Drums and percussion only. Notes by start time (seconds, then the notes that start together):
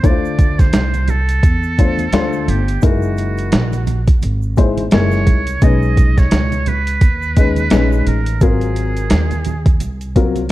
0.04 kick, closed hi-hat, shaker
0.25 shaker
0.39 kick, closed hi-hat, shaker
0.59 kick, snare, closed hi-hat, shaker
0.73 snare, closed hi-hat, low conga, shaker
0.94 closed hi-hat, high conga, shaker
1.08 closed hi-hat, high conga, low conga, shaker
1.29 closed hi-hat, shaker
1.43 kick, closed hi-hat, high conga, shaker
1.63 shaker
1.78 kick, closed hi-hat, shaker
1.98 closed hi-hat, high conga, shaker
2.13 snare, closed hi-hat, shaker
2.33 shaker
2.48 closed hi-hat, low conga, shaker
2.68 closed hi-hat, shaker
2.82 kick, closed hi-hat, shaker
3.02 shaker
3.17 closed hi-hat, shaker
3.37 closed hi-hat, shaker
3.52 snare, closed hi-hat, low conga, shaker
3.72 closed hi-hat, high conga, shaker
3.87 closed hi-hat, high conga, low conga, shaker
4.07 kick, closed hi-hat, shaker
4.22 closed hi-hat, high conga, shaker
4.42 shaker
4.57 kick, closed hi-hat, shaker
4.77 closed hi-hat, high conga, shaker
4.91 snare, closed hi-hat, shaker
5.11 snare, shaker
5.27 kick, closed hi-hat, low conga, shaker
5.47 closed hi-hat, shaker
5.62 kick, closed hi-hat, shaker
5.82 shaker
5.97 kick, closed hi-hat, shaker
6.18 kick, snare, closed hi-hat, shaker
6.31 snare, closed hi-hat, low conga, shaker
6.52 closed hi-hat, high conga, shaker
6.66 closed hi-hat, high conga, low conga, shaker
6.87 closed hi-hat, shaker
7.01 kick, closed hi-hat, high conga, shaker
7.22 shaker
7.36 kick, closed hi-hat, shaker
7.56 closed hi-hat, high conga, shaker
7.70 snare, closed hi-hat, shaker
7.92 shaker
8.07 closed hi-hat, low conga, shaker
8.26 closed hi-hat, shaker
8.41 kick, closed hi-hat, shaker
8.61 closed hi-hat, shaker
8.76 closed hi-hat, shaker
8.97 closed hi-hat, shaker
9.10 snare, closed hi-hat, low conga, shaker
9.31 closed hi-hat, high conga, shaker
9.45 closed hi-hat, high conga, low conga, shaker
9.66 kick, closed hi-hat, shaker
9.80 closed hi-hat, high conga, shaker
10.01 closed hi-hat, shaker
10.16 kick, closed hi-hat, shaker
10.36 closed hi-hat, high conga, shaker